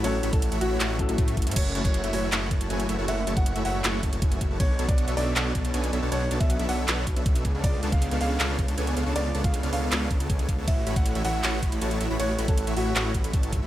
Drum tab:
CC |--------------------------------|x-------------------------------|--------------------------------|--------------------------------|
RD |x-------------------------------|x---------------x---------------|x---------------x---------------|x---------------x---------------|
HH |x---x-x-x-x-x---x---x-x-x-x-xxxx|x---x-x-x-x-o---x---x-x-x-x-x---|x---x-x-x-x-o---x---x-x-x-x-x---|x---x-x-x-x-o---x---x-x-x-x-x---|
CP |----------------x---------------|----------------x---------------|----------------x---------------|----------------x---------------|
BD |------o-------------o---o---o---|o-----o-------------o-----------|------o-------------o---o---o---|o-----o-------------o-----------|

CC |--------------------------------|--------------------------------|--------------------------------|--------------------------------|
RD |x---------------x---------------|x---------------x---------------|x---------------x---------------|x---------------x---------------|
HH |x---x-x-x-x-o---x---x-x-x-x-x---|x---x-x-x-x-o---x---x-x-x-x-x---|x---x-x-x-x-o---x---x-x-x-x-x---|x---x-x-x-x-o---x---x-x-x-x-x---|
CP |----------------x---------------|----------------x---------------|----------------x---------------|----------------x---------------|
BD |------o-------------o---o---o---|o-----o-------------o-----------|------o-------------o---o---o---|o-----o-------------o-----------|

CC |--------------------------------|
RD |x---------------x---------------|
HH |x---x-x-x-x-o---x---x-x-x-x-x---|
CP |----------------x---------------|
BD |------o-------------o---o---o---|